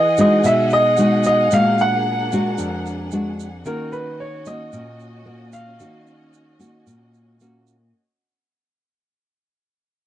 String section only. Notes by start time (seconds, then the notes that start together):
Already playing: G#4 D#5 F#5
1.51 D4 A#4
3.66 C#4 F#4 D#5